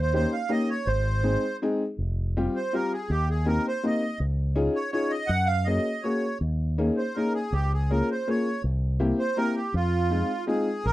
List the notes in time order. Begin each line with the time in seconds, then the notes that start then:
Already playing: D#2
0.01 C5
0.13 A#3 C#4 D#4 G4 C5
0.33 F5
0.49 A#3 C#4 D#4 G4 D#5
0.70 C#5
0.86 G#1 C5
1.23 G#3 C4 D#4 G#4
1.62 G#3 C4 D#4 G#4
1.98 F1
2.37 G3 C4 F4 G4
2.56 C5
2.73 G3 C4 F4 G4 A#4
2.93 G#4
3.10 D#2 G4
3.30 G#4
3.46 A#3 C4 D#4 G4 A#4
3.68 C5
3.83 A#3 C4 D#4 G4 D#5
4.20 C#2
4.55 C#4 D#4 F4 G#4
4.75 C#5
4.92 C#4 D#4 F4 G#4 C#5
5.10 D#5
5.27 F#2 F#5
5.46 F5
5.65 A#3 C#4 F#4 G#4 D#5
6.03 A#3 C#4 F#4 G#4 C#5
6.41 D#2
6.78 A#3 C#4 D#4 G#4
6.97 C5
7.16 A#3 C#4 D#4 G#4 A#4
7.34 G#4
7.52 C#2 G4
7.74 G#4
7.90 A#3 C#4 F4 G#4 A#4
8.11 C5
8.27 A#3 C#4 F4 G#4 C#5
8.64 C2
9.00 A#3 C4 E4 G4
9.19 C5
9.37 A#3 C4 E4 G4 A#4
9.56 G4
9.74 F2 F4
10.10 G#3 C4 D#4 F4
10.47 G#3 C4 D#4 F4 G#4
10.85 A#1 A#4